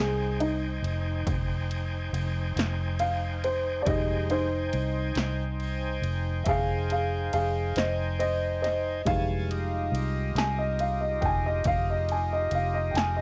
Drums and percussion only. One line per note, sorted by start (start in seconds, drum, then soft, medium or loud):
0.40 ride medium
0.84 ride medium
1.27 kick medium
1.27 ride medium
1.71 ride medium
2.14 ride medium
2.57 snare loud
2.57 ride medium
2.99 ride medium
3.44 ride medium
3.86 kick loud
3.86 ride medium
4.30 ride medium
4.73 ride medium
5.15 snare loud
5.15 ride medium
5.60 ride medium
6.04 ride medium
6.46 kick medium
6.46 ride medium
6.90 ride medium
7.33 ride medium
7.76 snare loud
7.76 ride medium
8.20 ride medium
8.64 snare soft
8.64 ride medium
9.06 kick loud
9.06 ride medium
9.51 ride medium
9.95 ride medium
10.36 snare loud
10.36 ride medium
10.79 ride medium
11.22 kick medium
11.22 ride medium
11.64 kick medium
11.64 ride medium
12.09 ride medium
12.51 ride medium
12.95 snare loud
12.95 ride medium